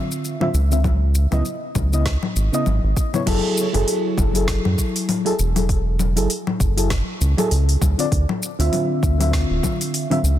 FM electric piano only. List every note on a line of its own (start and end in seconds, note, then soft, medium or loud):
0.00 0.36 D3 medium
0.00 0.37 C4 medium
0.00 0.37 F4 medium
0.00 0.38 E5 medium
0.40 0.48 D3 loud
0.40 0.48 C4 medium
0.40 0.48 F4 medium
0.40 0.49 E5 loud
0.70 0.78 D3 medium
0.70 0.78 C4 medium
0.70 0.79 F4 medium
0.70 0.79 E5 medium
1.31 1.43 C#3 medium
1.31 1.43 B3 medium
1.31 1.44 E4 medium
1.31 1.44 D#5 medium
1.92 2.04 C#3 medium
1.92 2.04 B3 medium
1.92 2.04 E4 medium
1.92 2.05 D#5 medium
2.52 2.64 C#3 medium
2.52 2.64 B3 medium
2.52 2.65 E4 medium
2.52 2.65 D#5 loud
3.13 3.21 C#3 medium
3.13 3.21 B3 medium
3.13 3.21 E4 medium
3.13 3.22 C#5 loud
3.26 3.67 F#3 loud
3.26 3.67 E4 medium
3.26 3.68 G#4 medium
3.26 3.68 A4 loud
3.73 4.30 F#3 medium
3.73 4.31 E4 medium
3.73 4.31 G#4 medium
3.73 4.31 A4 loud
4.33 5.21 F#3 medium
4.33 5.21 E4 medium
4.33 5.22 G#4 medium
4.37 5.23 A4 medium
5.25 5.33 F#3 loud
5.25 5.33 E4 medium
5.25 5.33 G#4 medium
5.25 5.33 A4 loud
5.56 5.63 F#3 medium
5.56 5.63 E4 medium
5.56 5.64 G#4 medium
5.56 5.64 A4 medium
6.16 6.28 F#3 medium
6.16 6.28 E4 medium
6.16 6.28 G#4 medium
6.16 6.29 A4 medium
6.77 6.88 F#3 medium
6.77 6.89 E4 medium
6.77 6.89 G#4 medium
6.77 6.89 A4 medium
7.37 7.49 F#3 medium
7.37 7.49 E4 medium
7.37 7.50 G#4 medium
7.37 7.50 A4 loud
7.98 8.05 D3 medium
7.98 8.06 C4 medium
7.98 8.06 F4 medium
7.98 8.06 D5 loud
8.59 9.16 D3 medium
8.59 9.16 C4 medium
8.59 9.16 F4 medium
8.59 9.16 E5 medium
9.18 10.06 D3 medium
9.18 10.06 C4 medium
9.18 10.07 F4 medium
9.22 10.08 E5 medium
10.10 10.18 D3 loud
10.10 10.18 C4 medium
10.10 10.18 F4 medium
10.10 10.19 E5 loud